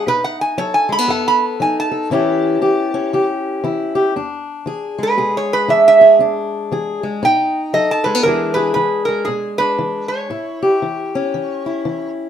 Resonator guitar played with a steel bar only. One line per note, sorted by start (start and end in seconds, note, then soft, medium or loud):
0.08 0.24 B4 loud
0.24 0.40 F#5 medium
0.41 0.57 G#5 medium
0.58 0.74 C#5 medium
0.74 0.91 G#5 medium
0.92 1.08 B5 loud
1.10 1.26 F#5 medium
1.28 1.43 B5 loud
1.62 1.77 G#5 medium
1.80 3.28 A5 medium
5.03 5.35 B4 medium
5.37 5.53 C#5 medium
5.53 5.69 B4 loud
5.70 5.86 E5 medium
5.88 6.14 E5 loud
7.25 7.90 G5 loud
7.74 8.03 D#5 medium
7.91 8.24 A5 medium
8.04 8.23 B4 medium
8.23 8.53 A#4 medium
8.54 8.73 B4 medium
8.74 9.05 B4 medium
9.05 9.27 A#4 medium
9.25 9.59 G#4 medium
9.58 10.08 B4 medium
10.08 12.11 C#5 medium